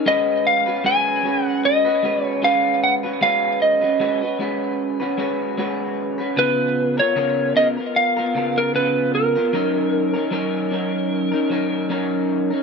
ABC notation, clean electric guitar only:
X:1
M:4/4
L:1/16
Q:"Swing 16ths" 1/4=76
K:G#dor
V:1 name="Clean electric guitar"
[G,CFB]3 [CFB] [G,CFB]2 [G,CFB]3 [CFB] [G,CFB]2 [G,CFB]3 [CFB] | [G,CFB]3 [CFB] [G,CFB] [CFB] [G,CFB]3 [CFB] [G,CFB]2 [G,CFB]3 [CFB] | [C,B,E]3 [B,EA] [C,B,EA]2 [C,B,EA] [B,EA]2 [B,EA] [C,B,EA]2 [C,B,E]3 [B,EA] | [F,CDA]3 [CDA] [F,CDA]2 [F,CDA]3 [CDA] [F,CDA]2 [F,CDA]3 [CDA] |]